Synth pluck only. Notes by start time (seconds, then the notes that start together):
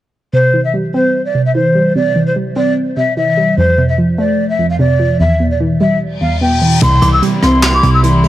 0.33 C3
0.54 E3
0.74 G3
0.94 C4
1.35 C3
1.55 E3
1.75 G3
1.95 C3
2.16 E3
2.36 G3
2.56 C4
2.97 C3
3.17 E3
3.37 G3
3.58 F2
3.78 C3
3.98 F3
4.18 A3
4.59 F2
4.79 C3
4.99 F3
5.20 E2
5.40 B2
5.60 E3
5.81 G3
6.21 E2
6.41 B2
6.62 E3
6.82 C3
7.02 E3
7.22 G3
7.43 C4
7.83 C3
8.03 E3
8.24 G3